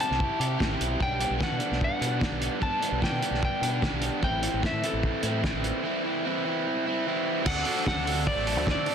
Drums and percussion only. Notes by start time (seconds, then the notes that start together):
0.00 closed hi-hat
0.11 snare
0.20 kick
0.41 closed hi-hat
0.60 kick, snare
0.81 closed hi-hat
1.00 kick
1.21 closed hi-hat
1.41 kick, snare
1.60 closed hi-hat
1.73 snare
1.81 kick
2.02 closed hi-hat
2.21 kick, snare
2.42 closed hi-hat
2.62 kick
2.82 closed hi-hat
3.02 kick, snare
3.22 closed hi-hat
3.34 snare
3.43 kick
3.63 closed hi-hat
3.82 kick, snare
4.02 closed hi-hat
4.23 kick
4.43 closed hi-hat
4.63 kick, snare
4.84 closed hi-hat
5.03 kick
5.23 closed hi-hat
5.44 kick, snare
5.64 closed hi-hat
7.46 kick, crash
7.65 open hi-hat
7.87 kick, snare
8.07 open hi-hat
8.27 kick
8.47 open hi-hat
8.67 kick, snare
8.86 open hi-hat